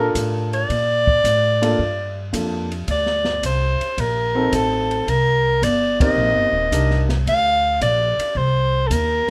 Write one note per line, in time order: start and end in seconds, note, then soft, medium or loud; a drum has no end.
0.00 0.13 A#2 medium
0.00 0.66 D4 medium
0.00 0.66 F4 medium
0.00 0.66 A4 medium
0.00 0.13 A#4 medium
0.00 0.66 A#4 medium
0.15 0.68 A2 medium
0.15 kick soft
0.15 hi-hat pedal medium
0.15 ride medium
0.53 2.30 D5 loud
0.53 ride soft
0.69 1.22 A#2 medium
0.69 kick soft
0.69 ride medium
1.07 kick medium
1.24 1.77 A2 medium
1.24 kick soft
1.24 hi-hat pedal medium
1.24 ride medium
1.62 1.77 A#3 medium
1.62 1.77 D4 medium
1.62 1.77 F4 medium
1.62 1.77 A4 medium
1.62 ride medium
1.79 2.32 G2 medium
1.79 kick soft
2.33 2.86 F2 medium
2.33 2.67 A#3 soft
2.33 2.67 D4 soft
2.33 2.67 F4 soft
2.33 2.67 A4 medium
2.33 kick soft
2.33 hi-hat pedal medium
2.33 ride medium
2.72 ride soft
2.88 3.41 D2 medium
2.88 3.40 D5 medium
2.88 kick soft
2.88 ride medium
3.06 snare soft
3.24 snare soft
3.43 3.78 C2 medium
3.43 4.01 C5 medium
3.43 kick soft
3.43 hi-hat pedal soft
3.43 ride medium
3.81 ride soft
3.98 4.51 A#1 medium
3.98 4.53 A#4 medium
3.98 kick soft
3.98 ride medium
4.35 5.03 C4 medium
4.35 5.04 D#4 medium
4.35 5.04 F#4 medium
4.35 5.04 A4 medium
4.52 5.05 A1 medium
4.52 5.11 A4 medium
4.52 kick soft
4.52 hi-hat pedal medium
4.52 ride medium
4.91 ride soft
5.07 5.60 C2 medium
5.07 5.65 A#4 medium
5.07 kick soft
5.07 ride medium
5.62 6.15 G1 medium
5.62 6.00 D5 medium
5.62 kick soft
5.62 hi-hat pedal medium
5.62 ride medium
6.00 6.68 C4 medium
6.00 6.68 D#4 medium
6.00 6.68 G4 medium
6.00 6.68 A#4 medium
6.00 7.06 D#5 loud
6.00 kick medium
6.00 ride medium
6.16 6.34 A#1 medium
6.34 6.52 G1 medium
6.52 6.70 D#1 medium
6.72 7.25 C2 medium
6.72 7.05 D4 soft
6.72 7.05 D#4 soft
6.72 7.06 G4 medium
6.72 7.06 A#4 medium
6.72 kick soft
6.72 hi-hat pedal medium
6.72 ride medium
6.91 snare soft
7.09 snare soft
7.09 ride soft
7.26 7.79 D2 medium
7.26 7.78 F5 loud
7.26 kick soft
7.26 ride medium
7.81 8.16 A#1 medium
7.81 8.39 D5 medium
7.81 kick soft
7.81 hi-hat pedal medium
7.81 ride medium
8.18 muted upright bass stroke soft
8.18 ride medium
8.35 8.88 C2 medium
8.35 8.88 C5 medium
8.35 kick soft
8.87 9.25 D#2 medium
8.87 8.94 A4 medium
8.87 kick soft
8.87 hi-hat pedal medium
8.87 ride medium
8.92 9.30 A#4 medium
9.27 muted upright bass stroke soft